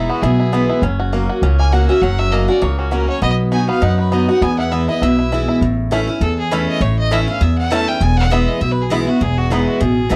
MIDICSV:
0, 0, Header, 1, 5, 480
1, 0, Start_track
1, 0, Key_signature, 4, "major"
1, 0, Tempo, 299401
1, 1324, Time_signature, 4, 2, 24, 8
1, 16287, End_track
2, 0, Start_track
2, 0, Title_t, "Fiddle"
2, 0, Program_c, 0, 110
2, 0, Note_on_c, 0, 63, 63
2, 147, Note_on_c, 0, 66, 78
2, 171, Note_off_c, 0, 63, 0
2, 346, Note_on_c, 0, 68, 69
2, 370, Note_off_c, 0, 66, 0
2, 1315, Note_off_c, 0, 68, 0
2, 2549, Note_on_c, 0, 80, 91
2, 2766, Note_on_c, 0, 78, 87
2, 2790, Note_off_c, 0, 80, 0
2, 3011, Note_off_c, 0, 78, 0
2, 3020, Note_on_c, 0, 76, 91
2, 3233, Note_on_c, 0, 78, 103
2, 3257, Note_off_c, 0, 76, 0
2, 3506, Note_on_c, 0, 76, 102
2, 3530, Note_off_c, 0, 78, 0
2, 3718, Note_on_c, 0, 75, 84
2, 3743, Note_off_c, 0, 76, 0
2, 3985, Note_off_c, 0, 75, 0
2, 3996, Note_on_c, 0, 74, 82
2, 4213, Note_on_c, 0, 73, 74
2, 4237, Note_off_c, 0, 74, 0
2, 4468, Note_off_c, 0, 73, 0
2, 4478, Note_on_c, 0, 66, 42
2, 4690, Note_on_c, 0, 70, 83
2, 4714, Note_off_c, 0, 66, 0
2, 4941, Note_off_c, 0, 70, 0
2, 4950, Note_on_c, 0, 73, 82
2, 5150, Note_off_c, 0, 73, 0
2, 5171, Note_on_c, 0, 75, 93
2, 5327, Note_off_c, 0, 75, 0
2, 5654, Note_on_c, 0, 80, 84
2, 5895, Note_off_c, 0, 80, 0
2, 5915, Note_on_c, 0, 77, 95
2, 6134, Note_on_c, 0, 78, 103
2, 6159, Note_off_c, 0, 77, 0
2, 6393, Note_off_c, 0, 78, 0
2, 6405, Note_on_c, 0, 71, 71
2, 6621, Note_on_c, 0, 75, 73
2, 6645, Note_off_c, 0, 71, 0
2, 6876, Note_off_c, 0, 75, 0
2, 6885, Note_on_c, 0, 78, 92
2, 7087, Note_on_c, 0, 80, 101
2, 7111, Note_off_c, 0, 78, 0
2, 7342, Note_off_c, 0, 80, 0
2, 7351, Note_on_c, 0, 78, 97
2, 7563, Note_on_c, 0, 76, 83
2, 7587, Note_off_c, 0, 78, 0
2, 7828, Note_off_c, 0, 76, 0
2, 7839, Note_on_c, 0, 75, 85
2, 8056, Note_on_c, 0, 76, 74
2, 8080, Note_off_c, 0, 75, 0
2, 8902, Note_off_c, 0, 76, 0
2, 9962, Note_on_c, 0, 69, 83
2, 10209, Note_off_c, 0, 69, 0
2, 10238, Note_on_c, 0, 68, 84
2, 10445, Note_on_c, 0, 71, 80
2, 10469, Note_off_c, 0, 68, 0
2, 10708, Note_off_c, 0, 71, 0
2, 10715, Note_on_c, 0, 75, 101
2, 10932, Note_on_c, 0, 73, 84
2, 10956, Note_off_c, 0, 75, 0
2, 11192, Note_off_c, 0, 73, 0
2, 11204, Note_on_c, 0, 75, 96
2, 11426, Note_on_c, 0, 76, 80
2, 11450, Note_off_c, 0, 75, 0
2, 11666, Note_off_c, 0, 76, 0
2, 11675, Note_on_c, 0, 77, 92
2, 11905, Note_on_c, 0, 76, 79
2, 11929, Note_off_c, 0, 77, 0
2, 12141, Note_off_c, 0, 76, 0
2, 12151, Note_on_c, 0, 78, 100
2, 12374, Note_on_c, 0, 81, 113
2, 12398, Note_off_c, 0, 78, 0
2, 12637, Note_on_c, 0, 79, 97
2, 12661, Note_off_c, 0, 81, 0
2, 12862, Note_on_c, 0, 80, 107
2, 12886, Note_off_c, 0, 79, 0
2, 13106, Note_off_c, 0, 80, 0
2, 13116, Note_on_c, 0, 78, 118
2, 13335, Note_on_c, 0, 76, 92
2, 13359, Note_off_c, 0, 78, 0
2, 13589, Note_on_c, 0, 75, 82
2, 13613, Note_off_c, 0, 76, 0
2, 13807, Note_on_c, 0, 76, 94
2, 13831, Note_off_c, 0, 75, 0
2, 13969, Note_on_c, 0, 71, 78
2, 13993, Note_off_c, 0, 76, 0
2, 14134, Note_on_c, 0, 68, 77
2, 14158, Note_off_c, 0, 71, 0
2, 14287, Note_on_c, 0, 64, 72
2, 14311, Note_off_c, 0, 68, 0
2, 14568, Note_on_c, 0, 66, 84
2, 14592, Note_off_c, 0, 64, 0
2, 14779, Note_on_c, 0, 68, 94
2, 14803, Note_off_c, 0, 66, 0
2, 15034, Note_on_c, 0, 66, 93
2, 15058, Note_off_c, 0, 68, 0
2, 15257, Note_on_c, 0, 63, 68
2, 15281, Note_off_c, 0, 66, 0
2, 15510, Note_on_c, 0, 66, 70
2, 15534, Note_off_c, 0, 63, 0
2, 15724, Note_on_c, 0, 68, 72
2, 15748, Note_off_c, 0, 66, 0
2, 16287, Note_off_c, 0, 68, 0
2, 16287, End_track
3, 0, Start_track
3, 0, Title_t, "Five-string banjo"
3, 0, Program_c, 1, 105
3, 0, Note_on_c, 1, 64, 58
3, 153, Note_on_c, 1, 59, 68
3, 349, Note_off_c, 1, 64, 0
3, 368, Note_on_c, 1, 64, 65
3, 618, Note_off_c, 1, 64, 0
3, 637, Note_on_c, 1, 64, 54
3, 803, Note_off_c, 1, 59, 0
3, 851, Note_on_c, 1, 59, 73
3, 1095, Note_off_c, 1, 64, 0
3, 1114, Note_on_c, 1, 64, 55
3, 1327, Note_off_c, 1, 59, 0
3, 1327, Note_off_c, 1, 64, 0
3, 1335, Note_on_c, 1, 61, 62
3, 1597, Note_on_c, 1, 66, 59
3, 1812, Note_on_c, 1, 58, 59
3, 2021, Note_off_c, 1, 61, 0
3, 2069, Note_off_c, 1, 66, 0
3, 2076, Note_on_c, 1, 66, 63
3, 2291, Note_on_c, 1, 61, 62
3, 2499, Note_off_c, 1, 58, 0
3, 2556, Note_on_c, 1, 58, 52
3, 2762, Note_off_c, 1, 66, 0
3, 2769, Note_on_c, 1, 66, 56
3, 2979, Note_off_c, 1, 61, 0
3, 3036, Note_on_c, 1, 61, 52
3, 3204, Note_off_c, 1, 58, 0
3, 3252, Note_on_c, 1, 54, 66
3, 3507, Note_off_c, 1, 66, 0
3, 3514, Note_on_c, 1, 66, 61
3, 3684, Note_off_c, 1, 61, 0
3, 3725, Note_on_c, 1, 58, 62
3, 3939, Note_off_c, 1, 54, 0
3, 3966, Note_off_c, 1, 66, 0
3, 3985, Note_on_c, 1, 66, 60
3, 4184, Note_off_c, 1, 58, 0
3, 4203, Note_on_c, 1, 58, 62
3, 4468, Note_on_c, 1, 61, 55
3, 4639, Note_off_c, 1, 66, 0
3, 4679, Note_on_c, 1, 66, 56
3, 4894, Note_off_c, 1, 58, 0
3, 4930, Note_off_c, 1, 66, 0
3, 4950, Note_on_c, 1, 66, 47
3, 5120, Note_off_c, 1, 61, 0
3, 5164, Note_off_c, 1, 66, 0
3, 5166, Note_on_c, 1, 59, 73
3, 5641, Note_on_c, 1, 66, 60
3, 5856, Note_off_c, 1, 59, 0
3, 5912, Note_on_c, 1, 59, 75
3, 6125, Note_on_c, 1, 63, 60
3, 6333, Note_off_c, 1, 66, 0
3, 6389, Note_on_c, 1, 66, 53
3, 6562, Note_off_c, 1, 59, 0
3, 6603, Note_on_c, 1, 59, 69
3, 6815, Note_off_c, 1, 63, 0
3, 6852, Note_off_c, 1, 66, 0
3, 6871, Note_on_c, 1, 66, 56
3, 7069, Note_off_c, 1, 59, 0
3, 7085, Note_off_c, 1, 66, 0
3, 7089, Note_on_c, 1, 59, 78
3, 7351, Note_on_c, 1, 64, 56
3, 7546, Note_off_c, 1, 59, 0
3, 7566, Note_on_c, 1, 59, 57
3, 7810, Note_off_c, 1, 64, 0
3, 7829, Note_on_c, 1, 64, 62
3, 8031, Note_off_c, 1, 64, 0
3, 8050, Note_on_c, 1, 64, 62
3, 8256, Note_off_c, 1, 59, 0
3, 8299, Note_off_c, 1, 64, 0
3, 8318, Note_on_c, 1, 64, 53
3, 8517, Note_off_c, 1, 64, 0
3, 8536, Note_on_c, 1, 64, 56
3, 8774, Note_off_c, 1, 64, 0
3, 8793, Note_on_c, 1, 64, 51
3, 9006, Note_off_c, 1, 64, 0
3, 9494, Note_on_c, 1, 57, 70
3, 9505, Note_on_c, 1, 61, 63
3, 9506, Note_on_c, 1, 64, 69
3, 9606, Note_off_c, 1, 57, 0
3, 9608, Note_off_c, 1, 61, 0
3, 9611, Note_off_c, 1, 64, 0
3, 10457, Note_on_c, 1, 57, 65
3, 10463, Note_on_c, 1, 61, 68
3, 10465, Note_on_c, 1, 64, 62
3, 10568, Note_off_c, 1, 57, 0
3, 10569, Note_off_c, 1, 61, 0
3, 10571, Note_off_c, 1, 64, 0
3, 11406, Note_on_c, 1, 57, 69
3, 11417, Note_on_c, 1, 61, 67
3, 11419, Note_on_c, 1, 64, 63
3, 11522, Note_off_c, 1, 57, 0
3, 11524, Note_off_c, 1, 61, 0
3, 11528, Note_off_c, 1, 64, 0
3, 12375, Note_on_c, 1, 57, 67
3, 12380, Note_on_c, 1, 61, 65
3, 12384, Note_on_c, 1, 64, 67
3, 12486, Note_off_c, 1, 57, 0
3, 12488, Note_off_c, 1, 61, 0
3, 12491, Note_off_c, 1, 64, 0
3, 13340, Note_on_c, 1, 59, 62
3, 13351, Note_on_c, 1, 64, 70
3, 13384, Note_off_c, 1, 64, 0
3, 13450, Note_off_c, 1, 59, 0
3, 14295, Note_on_c, 1, 59, 63
3, 14305, Note_on_c, 1, 64, 69
3, 14337, Note_off_c, 1, 64, 0
3, 14408, Note_off_c, 1, 59, 0
3, 15261, Note_on_c, 1, 59, 66
3, 15267, Note_on_c, 1, 64, 61
3, 15299, Note_off_c, 1, 64, 0
3, 15371, Note_off_c, 1, 59, 0
3, 16221, Note_on_c, 1, 59, 66
3, 16229, Note_on_c, 1, 64, 62
3, 16261, Note_off_c, 1, 64, 0
3, 16287, Note_off_c, 1, 59, 0
3, 16287, End_track
4, 0, Start_track
4, 0, Title_t, "Steel-string acoustic guitar"
4, 0, Program_c, 2, 25
4, 0, Note_on_c, 2, 40, 84
4, 0, Note_on_c, 2, 52, 55
4, 0, Note_on_c, 2, 56, 56
4, 0, Note_on_c, 2, 59, 65
4, 0, Note_on_c, 2, 64, 58
4, 315, Note_off_c, 2, 40, 0
4, 337, Note_off_c, 2, 52, 0
4, 342, Note_off_c, 2, 56, 0
4, 347, Note_off_c, 2, 59, 0
4, 351, Note_off_c, 2, 64, 0
4, 373, Note_on_c, 2, 47, 87
4, 842, Note_on_c, 2, 52, 65
4, 850, Note_on_c, 2, 56, 67
4, 862, Note_on_c, 2, 59, 68
4, 871, Note_on_c, 2, 64, 67
4, 1285, Note_off_c, 2, 47, 0
4, 1301, Note_off_c, 2, 52, 0
4, 1305, Note_off_c, 2, 56, 0
4, 1311, Note_off_c, 2, 59, 0
4, 1316, Note_off_c, 2, 64, 0
4, 1330, Note_on_c, 2, 42, 86
4, 1804, Note_on_c, 2, 54, 57
4, 1811, Note_on_c, 2, 58, 58
4, 1823, Note_on_c, 2, 61, 59
4, 1829, Note_on_c, 2, 66, 62
4, 2243, Note_off_c, 2, 42, 0
4, 2262, Note_off_c, 2, 54, 0
4, 2266, Note_off_c, 2, 58, 0
4, 2272, Note_off_c, 2, 61, 0
4, 2275, Note_off_c, 2, 66, 0
4, 2289, Note_on_c, 2, 49, 86
4, 2760, Note_on_c, 2, 54, 53
4, 2774, Note_on_c, 2, 58, 66
4, 2781, Note_on_c, 2, 61, 65
4, 2788, Note_on_c, 2, 66, 64
4, 3009, Note_off_c, 2, 66, 0
4, 3015, Note_off_c, 2, 54, 0
4, 3022, Note_off_c, 2, 58, 0
4, 3026, Note_off_c, 2, 61, 0
4, 3028, Note_on_c, 2, 66, 61
4, 3056, Note_on_c, 2, 61, 51
4, 3203, Note_off_c, 2, 49, 0
4, 3235, Note_off_c, 2, 66, 0
4, 3249, Note_off_c, 2, 61, 0
4, 3718, Note_on_c, 2, 54, 48
4, 3729, Note_on_c, 2, 58, 59
4, 3733, Note_on_c, 2, 61, 60
4, 3748, Note_on_c, 2, 66, 62
4, 3958, Note_off_c, 2, 66, 0
4, 3974, Note_off_c, 2, 54, 0
4, 3977, Note_on_c, 2, 66, 67
4, 3979, Note_off_c, 2, 58, 0
4, 3982, Note_off_c, 2, 61, 0
4, 4003, Note_on_c, 2, 61, 51
4, 4189, Note_off_c, 2, 66, 0
4, 4192, Note_on_c, 2, 49, 89
4, 4202, Note_off_c, 2, 61, 0
4, 4668, Note_on_c, 2, 54, 64
4, 4678, Note_on_c, 2, 58, 72
4, 4688, Note_on_c, 2, 61, 74
4, 4693, Note_on_c, 2, 66, 66
4, 5114, Note_off_c, 2, 49, 0
4, 5134, Note_off_c, 2, 54, 0
4, 5139, Note_off_c, 2, 58, 0
4, 5144, Note_off_c, 2, 61, 0
4, 5147, Note_off_c, 2, 66, 0
4, 5155, Note_on_c, 2, 47, 81
4, 5634, Note_on_c, 2, 54, 52
4, 5644, Note_on_c, 2, 59, 59
4, 5652, Note_on_c, 2, 63, 68
4, 5657, Note_on_c, 2, 66, 55
4, 6076, Note_off_c, 2, 47, 0
4, 6097, Note_off_c, 2, 54, 0
4, 6102, Note_off_c, 2, 59, 0
4, 6106, Note_off_c, 2, 63, 0
4, 6109, Note_off_c, 2, 66, 0
4, 6118, Note_on_c, 2, 42, 89
4, 6601, Note_on_c, 2, 54, 63
4, 6611, Note_on_c, 2, 59, 60
4, 6623, Note_on_c, 2, 63, 70
4, 6626, Note_on_c, 2, 66, 65
4, 6851, Note_off_c, 2, 66, 0
4, 6856, Note_off_c, 2, 54, 0
4, 6861, Note_off_c, 2, 59, 0
4, 6867, Note_off_c, 2, 63, 0
4, 6871, Note_on_c, 2, 66, 60
4, 6900, Note_on_c, 2, 63, 53
4, 7038, Note_off_c, 2, 42, 0
4, 7076, Note_off_c, 2, 66, 0
4, 7087, Note_on_c, 2, 40, 81
4, 7091, Note_off_c, 2, 63, 0
4, 7559, Note_on_c, 2, 52, 56
4, 7569, Note_on_c, 2, 56, 59
4, 7578, Note_on_c, 2, 59, 62
4, 7589, Note_on_c, 2, 64, 58
4, 7815, Note_off_c, 2, 52, 0
4, 7815, Note_off_c, 2, 64, 0
4, 7820, Note_off_c, 2, 56, 0
4, 7824, Note_off_c, 2, 59, 0
4, 7834, Note_on_c, 2, 64, 59
4, 7866, Note_on_c, 2, 59, 45
4, 8002, Note_off_c, 2, 40, 0
4, 8038, Note_off_c, 2, 64, 0
4, 8054, Note_off_c, 2, 59, 0
4, 8063, Note_on_c, 2, 47, 96
4, 8530, Note_on_c, 2, 52, 67
4, 8544, Note_on_c, 2, 56, 64
4, 8554, Note_on_c, 2, 59, 64
4, 8560, Note_on_c, 2, 64, 72
4, 8970, Note_off_c, 2, 47, 0
4, 8985, Note_off_c, 2, 52, 0
4, 8992, Note_off_c, 2, 56, 0
4, 8997, Note_off_c, 2, 59, 0
4, 9001, Note_off_c, 2, 64, 0
4, 9016, Note_on_c, 2, 45, 82
4, 9475, Note_on_c, 2, 52, 83
4, 9484, Note_on_c, 2, 57, 85
4, 9492, Note_on_c, 2, 61, 86
4, 9496, Note_on_c, 2, 64, 98
4, 9715, Note_off_c, 2, 64, 0
4, 9733, Note_off_c, 2, 52, 0
4, 9735, Note_on_c, 2, 64, 59
4, 9738, Note_off_c, 2, 57, 0
4, 9741, Note_off_c, 2, 61, 0
4, 9758, Note_on_c, 2, 61, 50
4, 9927, Note_off_c, 2, 45, 0
4, 9949, Note_off_c, 2, 64, 0
4, 9959, Note_on_c, 2, 40, 93
4, 9960, Note_off_c, 2, 61, 0
4, 10441, Note_on_c, 2, 52, 89
4, 10449, Note_on_c, 2, 57, 97
4, 10462, Note_on_c, 2, 61, 94
4, 10470, Note_on_c, 2, 64, 88
4, 10879, Note_off_c, 2, 40, 0
4, 10901, Note_off_c, 2, 52, 0
4, 10905, Note_off_c, 2, 57, 0
4, 10912, Note_off_c, 2, 61, 0
4, 10915, Note_off_c, 2, 64, 0
4, 10916, Note_on_c, 2, 45, 81
4, 11393, Note_on_c, 2, 52, 84
4, 11401, Note_on_c, 2, 57, 82
4, 11410, Note_on_c, 2, 61, 85
4, 11420, Note_on_c, 2, 64, 94
4, 11646, Note_off_c, 2, 64, 0
4, 11652, Note_off_c, 2, 52, 0
4, 11657, Note_off_c, 2, 57, 0
4, 11661, Note_off_c, 2, 61, 0
4, 11665, Note_on_c, 2, 64, 63
4, 11686, Note_on_c, 2, 61, 50
4, 11837, Note_off_c, 2, 45, 0
4, 11874, Note_off_c, 2, 64, 0
4, 11877, Note_on_c, 2, 40, 96
4, 11885, Note_off_c, 2, 61, 0
4, 12354, Note_on_c, 2, 52, 85
4, 12369, Note_on_c, 2, 57, 89
4, 12374, Note_on_c, 2, 61, 91
4, 12383, Note_on_c, 2, 64, 110
4, 12598, Note_off_c, 2, 64, 0
4, 12613, Note_off_c, 2, 52, 0
4, 12617, Note_on_c, 2, 64, 55
4, 12621, Note_off_c, 2, 57, 0
4, 12623, Note_off_c, 2, 61, 0
4, 12648, Note_on_c, 2, 61, 52
4, 12798, Note_off_c, 2, 40, 0
4, 12830, Note_off_c, 2, 64, 0
4, 12843, Note_on_c, 2, 40, 85
4, 12846, Note_off_c, 2, 61, 0
4, 13314, Note_on_c, 2, 52, 84
4, 13325, Note_on_c, 2, 56, 88
4, 13337, Note_on_c, 2, 59, 95
4, 13344, Note_on_c, 2, 64, 88
4, 13761, Note_off_c, 2, 40, 0
4, 13778, Note_off_c, 2, 52, 0
4, 13784, Note_off_c, 2, 56, 0
4, 13790, Note_off_c, 2, 59, 0
4, 13793, Note_off_c, 2, 64, 0
4, 13805, Note_on_c, 2, 47, 86
4, 14271, Note_on_c, 2, 52, 87
4, 14283, Note_on_c, 2, 56, 95
4, 14292, Note_on_c, 2, 59, 96
4, 14298, Note_on_c, 2, 64, 106
4, 14518, Note_off_c, 2, 64, 0
4, 14532, Note_off_c, 2, 52, 0
4, 14537, Note_on_c, 2, 64, 61
4, 14538, Note_off_c, 2, 56, 0
4, 14543, Note_off_c, 2, 59, 0
4, 14566, Note_on_c, 2, 59, 54
4, 14723, Note_off_c, 2, 47, 0
4, 14751, Note_off_c, 2, 64, 0
4, 14765, Note_on_c, 2, 40, 88
4, 14766, Note_off_c, 2, 59, 0
4, 15235, Note_on_c, 2, 52, 74
4, 15250, Note_on_c, 2, 56, 87
4, 15259, Note_on_c, 2, 59, 84
4, 15265, Note_on_c, 2, 64, 78
4, 15683, Note_off_c, 2, 40, 0
4, 15700, Note_off_c, 2, 52, 0
4, 15707, Note_off_c, 2, 56, 0
4, 15712, Note_off_c, 2, 59, 0
4, 15715, Note_off_c, 2, 64, 0
4, 15720, Note_on_c, 2, 47, 95
4, 16183, Note_on_c, 2, 52, 83
4, 16194, Note_on_c, 2, 56, 90
4, 16204, Note_on_c, 2, 59, 101
4, 16208, Note_on_c, 2, 64, 101
4, 16287, Note_off_c, 2, 47, 0
4, 16287, Note_off_c, 2, 52, 0
4, 16287, Note_off_c, 2, 56, 0
4, 16287, Note_off_c, 2, 59, 0
4, 16287, Note_off_c, 2, 64, 0
4, 16287, End_track
5, 0, Start_track
5, 0, Title_t, "Upright bass"
5, 0, Program_c, 3, 32
5, 360, Note_on_c, 3, 35, 84
5, 1076, Note_off_c, 3, 35, 0
5, 1314, Note_on_c, 3, 30, 91
5, 2032, Note_off_c, 3, 30, 0
5, 2275, Note_on_c, 3, 37, 82
5, 2993, Note_off_c, 3, 37, 0
5, 3233, Note_on_c, 3, 30, 98
5, 3952, Note_off_c, 3, 30, 0
5, 4202, Note_on_c, 3, 37, 85
5, 4917, Note_off_c, 3, 37, 0
5, 5160, Note_on_c, 3, 35, 85
5, 5876, Note_off_c, 3, 35, 0
5, 6118, Note_on_c, 3, 42, 85
5, 6835, Note_off_c, 3, 42, 0
5, 7077, Note_on_c, 3, 40, 92
5, 7794, Note_off_c, 3, 40, 0
5, 8042, Note_on_c, 3, 35, 75
5, 8757, Note_off_c, 3, 35, 0
5, 8996, Note_on_c, 3, 33, 93
5, 9714, Note_off_c, 3, 33, 0
5, 9949, Note_on_c, 3, 40, 86
5, 10670, Note_off_c, 3, 40, 0
5, 10909, Note_on_c, 3, 33, 100
5, 11630, Note_off_c, 3, 33, 0
5, 11876, Note_on_c, 3, 40, 87
5, 12594, Note_off_c, 3, 40, 0
5, 12834, Note_on_c, 3, 28, 98
5, 13553, Note_off_c, 3, 28, 0
5, 13804, Note_on_c, 3, 35, 82
5, 14520, Note_off_c, 3, 35, 0
5, 14765, Note_on_c, 3, 28, 93
5, 15481, Note_off_c, 3, 28, 0
5, 15728, Note_on_c, 3, 33, 83
5, 16136, Note_off_c, 3, 33, 0
5, 16201, Note_on_c, 3, 32, 81
5, 16287, Note_off_c, 3, 32, 0
5, 16287, End_track
0, 0, End_of_file